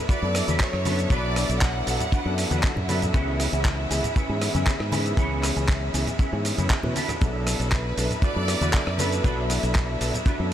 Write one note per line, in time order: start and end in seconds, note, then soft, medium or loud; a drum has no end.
0.00 7.20 E4 medium
0.00 7.20 E5 medium
0.09 0.28 D4 medium
0.09 0.29 F#4 medium
0.09 0.29 A4 medium
0.09 0.29 B4 loud
0.09 0.57 D5 loud
0.09 muted fingered electric bass stroke soft
0.09 kick loud
0.09 closed hi-hat medium
0.09 shaker soft
0.22 0.40 F#2 medium
0.22 0.57 F#3 medium
0.22 0.57 B3 medium
0.22 0.57 D4 medium
0.22 0.57 A4 loud
0.35 cross-stick medium
0.35 open hi-hat loud
0.35 ride medium
0.35 shaker medium
0.48 0.57 E2 medium
0.48 0.67 D4 medium
0.48 0.67 F#4 medium
0.48 0.67 A4 medium
0.48 0.67 B4 loud
0.48 closed hi-hat medium
0.48 high conga medium
0.48 shaker soft
0.59 0.72 F#3 medium
0.59 0.72 D4 medium
0.59 1.11 C#5 loud
0.59 kick loud
0.59 clap loud
0.59 closed hi-hat medium
0.59 shaker soft
0.73 1.05 F#2 medium
0.73 cross-stick medium
0.85 1.08 F#3 medium
0.85 1.08 B3 medium
0.85 1.08 D4 medium
0.85 0.99 D4 medium
0.85 0.99 F#4 medium
0.85 0.99 A4 medium
0.85 1.08 A4 loud
0.85 0.99 B4 loud
0.85 open hi-hat loud
0.85 ride medium
0.85 high conga medium
0.85 shaker medium
0.99 closed hi-hat medium
0.99 shaker soft
1.10 1.43 B1 loud
1.10 1.46 F#3 medium
1.10 1.46 B3 medium
1.10 1.43 D4 loud
1.10 1.47 D4 medium
1.10 1.43 F#4 loud
1.10 1.43 A4 loud
1.10 1.43 B4 loud
1.10 1.62 D5 loud
1.10 kick loud
1.10 closed hi-hat medium
1.10 shaker soft
1.36 cross-stick medium
1.36 open hi-hat loud
1.36 ride medium
1.36 shaker medium
1.49 1.81 B1 loud
1.49 1.84 F#3 medium
1.49 1.84 B3 medium
1.49 1.84 D4 medium
1.49 1.85 A4 medium
1.49 closed hi-hat medium
1.49 shaker soft
1.61 2.89 F#5 loud
1.61 kick loud
1.61 clap loud
1.61 closed hi-hat medium
1.61 shaker soft
1.75 muted clean electric guitar stroke soft
1.87 1.97 B1 medium
1.87 1.99 F#3 medium
1.87 1.99 B3 medium
1.87 1.99 D4 medium
1.87 1.99 A4 loud
1.87 open hi-hat loud
1.87 ride medium
1.87 shaker medium
2.00 closed hi-hat medium
2.00 low conga medium
2.00 shaker soft
2.12 2.32 D4 medium
2.12 2.32 F#4 medium
2.12 2.32 A4 medium
2.12 2.32 B4 loud
2.12 kick loud
2.12 closed hi-hat medium
2.12 shaker soft
2.25 2.44 F#2 loud
2.25 2.60 F#3 medium
2.25 2.61 B3 medium
2.25 2.61 D4 medium
2.25 2.61 A4 loud
2.38 open hi-hat loud
2.38 ride medium
2.38 shaker medium
2.51 2.60 E2 medium
2.51 2.70 D4 medium
2.51 2.70 F#4 medium
2.51 2.70 A4 medium
2.51 2.70 B4 loud
2.51 closed hi-hat medium
2.51 high conga medium
2.51 shaker soft
2.63 2.75 F#3 medium
2.63 2.75 B3 medium
2.63 2.75 D4 medium
2.63 2.75 A4 medium
2.63 kick loud
2.63 clap loud
2.63 closed hi-hat medium
2.63 shaker soft
2.76 3.08 F#2 medium
2.76 low conga medium
2.88 3.11 F#3 medium
2.88 3.11 B3 medium
2.88 3.11 D4 medium
2.88 3.02 D4 medium
2.88 3.02 F#4 medium
2.88 3.02 A4 medium
2.88 3.12 A4 loud
2.88 3.02 B4 loud
2.88 open hi-hat loud
2.88 ride medium
2.88 high conga medium
2.88 shaker medium
3.02 closed hi-hat medium
3.02 low conga medium
3.02 shaker soft
3.13 3.47 C#2 loud
3.13 3.49 E3 medium
3.13 3.50 B3 medium
3.13 3.46 C#4 loud
3.13 3.46 E4 medium
3.13 3.46 G#4 loud
3.13 3.46 B4 loud
3.13 kick loud
3.13 closed hi-hat medium
3.13 shaker soft
3.40 cross-stick medium
3.40 open hi-hat loud
3.40 ride medium
3.40 shaker medium
3.52 3.85 C#2 loud
3.52 3.87 E3 medium
3.52 3.87 B3 medium
3.52 3.88 C#4 medium
3.52 3.88 G#4 medium
3.52 closed hi-hat medium
3.52 shaker soft
3.65 kick loud
3.65 clap loud
3.65 closed hi-hat medium
3.65 shaker soft
3.78 muted clean electric guitar stroke soft
3.90 4.00 C#2 medium
3.90 4.02 E3 medium
3.90 4.02 B3 medium
3.90 4.02 C#4 medium
3.90 4.02 G#4 loud
3.90 open hi-hat loud
3.90 ride medium
3.90 shaker medium
4.04 closed hi-hat medium
4.04 low conga medium
4.04 shaker soft
4.15 4.35 C#4 medium
4.15 4.35 E4 medium
4.15 4.35 G#4 medium
4.15 4.35 B4 loud
4.15 muted fingered electric bass stroke soft
4.15 kick loud
4.15 closed hi-hat medium
4.15 shaker soft
4.29 4.47 G#2 loud
4.29 4.64 E3 medium
4.29 4.64 B3 medium
4.29 4.64 C#4 medium
4.29 4.64 G#4 loud
4.42 cross-stick medium
4.42 open hi-hat loud
4.42 ride medium
4.42 shaker medium
4.54 4.63 F#2 loud
4.54 4.73 C#4 medium
4.54 4.73 E4 medium
4.54 4.73 G#4 medium
4.54 4.73 B4 loud
4.54 closed hi-hat medium
4.54 high conga medium
4.54 shaker soft
4.66 4.78 E3 medium
4.66 4.78 B3 medium
4.66 4.79 C#4 medium
4.66 4.79 G#4 medium
4.66 kick loud
4.66 clap loud
4.66 closed hi-hat medium
4.66 shaker soft
4.80 5.12 G#2 medium
4.80 cross-stick medium
4.91 5.14 E3 medium
4.91 5.15 B3 medium
4.91 5.15 C#4 medium
4.91 5.05 C#4 medium
4.91 5.05 E4 medium
4.91 5.06 G#4 medium
4.91 5.15 G#4 loud
4.91 5.06 B4 loud
4.91 open hi-hat loud
4.91 ride medium
4.91 high conga medium
4.91 shaker medium
5.06 closed hi-hat medium
5.06 shaker soft
5.17 5.50 C#2 loud
5.17 5.53 E3 loud
5.17 5.53 B3 medium
5.17 5.50 C#4 loud
5.17 5.53 C#4 medium
5.17 5.50 E4 loud
5.17 5.50 G#4 loud
5.17 5.53 G#4 loud
5.17 5.50 B4 loud
5.17 kick loud
5.17 closed hi-hat medium
5.17 shaker soft
5.43 cross-stick medium
5.43 clap soft
5.43 open hi-hat loud
5.43 ride medium
5.43 shaker medium
5.56 5.88 C#2 loud
5.56 5.91 E3 medium
5.56 5.91 B3 medium
5.56 5.91 C#4 medium
5.56 5.91 G#4 medium
5.56 closed hi-hat medium
5.56 shaker soft
5.69 kick loud
5.69 clap loud
5.69 closed hi-hat soft
5.69 shaker soft
5.82 muted clean electric guitar stroke soft
5.93 6.04 C#2 medium
5.93 6.05 E3 medium
5.93 6.06 B3 medium
5.93 6.06 C#4 medium
5.93 6.06 G#4 loud
5.93 open hi-hat loud
5.93 ride medium
5.93 shaker medium
6.07 closed hi-hat medium
6.07 low conga medium
6.07 shaker soft
6.19 6.39 C#4 medium
6.19 6.39 E4 medium
6.19 6.39 G#4 medium
6.19 6.39 B4 medium
6.19 kick loud
6.19 closed hi-hat medium
6.19 shaker soft
6.32 6.50 G#2 medium
6.32 6.67 E3 medium
6.32 6.67 B3 medium
6.32 6.67 C#4 medium
6.32 6.68 G#4 loud
6.45 open hi-hat loud
6.45 ride medium
6.45 shaker medium
6.57 6.67 F#2 medium
6.57 6.77 C#4 medium
6.57 6.77 E4 medium
6.57 6.77 G#4 medium
6.57 6.77 B4 loud
6.57 closed hi-hat medium
6.57 high conga medium
6.57 shaker soft
6.70 kick loud
6.70 clap loud
6.70 closed hi-hat medium
6.70 shaker soft
6.83 6.92 B2 loud
6.83 6.94 E3 medium
6.83 6.94 B3 medium
6.83 6.94 C#4 medium
6.83 6.94 B4 loud
6.83 low conga medium
6.95 7.67 D4 loud
6.95 7.67 F#4 medium
6.95 7.67 A4 medium
6.95 7.67 B4 loud
6.95 open hi-hat loud
6.95 ride medium
6.95 high conga medium
6.95 shaker medium
7.09 cross-stick medium
7.09 closed hi-hat medium
7.09 low conga medium
7.09 shaker soft
7.21 7.54 B1 medium
7.21 7.56 F#3 medium
7.21 7.57 B3 medium
7.21 7.57 D4 medium
7.21 10.53 E4 medium
7.21 7.57 A4 loud
7.21 10.53 E5 medium
7.21 kick loud
7.21 closed hi-hat medium
7.21 shaker soft
7.46 7.70 A4 medium
7.46 cross-stick medium
7.46 open hi-hat loud
7.46 ride medium
7.46 shaker medium
7.59 7.92 B1 loud
7.59 7.94 F#3 medium
7.59 7.94 B3 medium
7.59 7.94 D4 medium
7.59 7.95 A4 medium
7.59 closed hi-hat medium
7.59 shaker soft
7.72 8.23 B4 loud
7.72 kick loud
7.72 clap loud
7.72 closed hi-hat medium
7.72 shaker soft
7.85 muted clean electric guitar stroke soft
7.97 8.07 B1 medium
7.97 8.09 F#3 medium
7.97 8.09 B3 medium
7.97 8.09 D4 medium
7.97 8.09 A4 loud
7.97 open hi-hat loud
7.97 ride medium
7.97 shaker medium
8.11 closed hi-hat medium
8.11 low conga medium
8.11 shaker soft
8.22 8.42 D4 medium
8.22 8.42 F#4 medium
8.22 8.42 A4 medium
8.22 8.42 B4 loud
8.22 8.95 D5 loud
8.22 muted fingered electric bass stroke soft
8.22 kick loud
8.22 closed hi-hat medium
8.22 shaker soft
8.35 8.54 F#2 medium
8.35 8.70 F#3 medium
8.35 8.71 B3 medium
8.35 8.71 D4 medium
8.35 8.71 A4 loud
8.48 cross-stick medium
8.48 open hi-hat loud
8.48 ride medium
8.48 shaker medium
8.61 8.70 E2 medium
8.61 8.80 D4 medium
8.61 8.80 F#4 medium
8.61 8.80 A4 medium
8.61 8.80 B4 loud
8.61 closed hi-hat medium
8.61 high conga medium
8.61 shaker soft
8.73 8.85 F#3 medium
8.73 8.85 B3 medium
8.73 8.85 D4 medium
8.73 8.86 A4 medium
8.73 kick loud
8.73 clap loud
8.73 closed hi-hat medium
8.73 shaker soft
8.87 9.19 F#2 medium
8.87 cross-stick medium
8.98 9.21 F#3 medium
8.98 9.21 B3 medium
8.98 9.21 D4 medium
8.98 9.12 D4 medium
8.98 9.12 F#4 medium
8.98 9.12 A4 medium
8.98 9.22 A4 loud
8.98 9.50 B4 loud
8.98 9.13 B4 loud
8.98 open hi-hat loud
8.98 ride medium
8.98 high conga medium
8.98 shaker medium
9.12 closed hi-hat medium
9.12 shaker soft
9.23 9.57 B1 loud
9.23 9.59 F#3 medium
9.23 9.60 B3 medium
9.23 9.56 D4 loud
9.23 9.60 D4 medium
9.23 9.56 F#4 medium
9.23 9.60 A4 loud
9.23 9.57 A4 loud
9.23 9.57 B4 loud
9.23 kick loud
9.23 closed hi-hat medium
9.23 shaker soft
9.50 cross-stick medium
9.50 open hi-hat loud
9.50 ride medium
9.50 shaker medium
9.62 9.95 B1 loud
9.62 9.98 F#3 medium
9.62 9.98 B3 medium
9.62 9.98 D4 medium
9.62 9.98 A4 medium
9.62 closed hi-hat medium
9.62 shaker soft
9.75 kick loud
9.75 clap loud
9.75 closed hi-hat medium
9.75 shaker soft
9.89 muted clean electric guitar stroke soft
10.00 10.10 B1 medium
10.00 10.12 F#3 medium
10.00 10.12 B3 medium
10.00 10.12 D4 medium
10.00 10.13 A4 loud
10.00 open hi-hat loud
10.00 ride medium
10.00 shaker medium
10.14 closed hi-hat medium
10.14 low conga medium
10.14 shaker soft
10.26 10.46 D4 medium
10.26 10.46 F#4 medium
10.26 10.46 A4 medium
10.26 10.46 B4 loud
10.26 kick loud
10.26 closed hi-hat medium
10.26 shaker soft
10.39 10.53 F#2 medium
10.39 10.53 F#3 medium
10.39 10.53 B3 medium
10.39 10.53 D4 medium
10.39 10.53 A4 loud